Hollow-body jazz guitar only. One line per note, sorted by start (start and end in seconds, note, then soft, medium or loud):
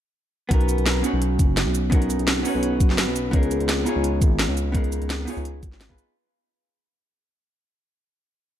0.49 1.00 B3 medium
0.49 1.01 C#4 medium
0.49 1.02 D#4 medium
0.49 1.03 F#4 medium
0.54 1.03 A#4 loud
1.02 1.89 B3 medium
1.02 1.90 C#4 medium
1.02 1.90 D#4 medium
1.02 1.91 F#4 medium
1.07 1.92 C#5 medium
1.90 2.42 B3 loud
1.90 2.43 C#4 medium
1.90 2.43 D#4 medium
1.90 2.44 F#4 medium
1.95 2.42 A#4 loud
2.43 3.30 B3 medium
2.43 3.31 C#4 medium
2.43 3.31 D#4 medium
2.43 3.32 F#4 medium
2.48 3.33 C#5 medium
3.31 3.83 B3 loud
3.31 3.84 D#4 medium
3.31 3.85 G#4 medium
3.36 3.86 A#4 loud
3.84 4.71 B3 medium
3.84 4.72 D#4 medium
3.84 4.73 F4 medium
3.84 4.73 G#4 medium
3.89 4.74 C#5 medium
4.72 5.24 B3 medium
4.72 5.25 D#4 medium
4.72 5.26 G#4 medium
4.77 5.27 A#4 loud
5.25 5.87 B3 medium
5.25 5.88 D#4 medium
5.25 5.88 F4 medium
5.25 5.89 G#4 medium
5.30 5.89 C#5 medium
5.89 6.13 B3 medium
5.89 6.14 D#4 medium
5.89 6.14 F4 medium
5.89 6.14 G#4 medium
5.89 6.15 B4 medium